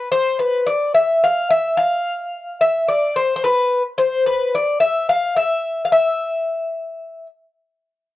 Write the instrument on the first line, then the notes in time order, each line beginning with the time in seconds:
bouzouki
0.12 C5
0.39 B4
0.67 D5
0.94 E5
1.24 F5
1.50 E5
1.77 F5
2.61 E5
2.88 D5
3.16 C5
3.36 C5
3.44 B4
3.98 C5
4.26 B4
4.55 D5
4.80 E5
5.09 F5
5.36 E5
5.85 F5
5.92 E5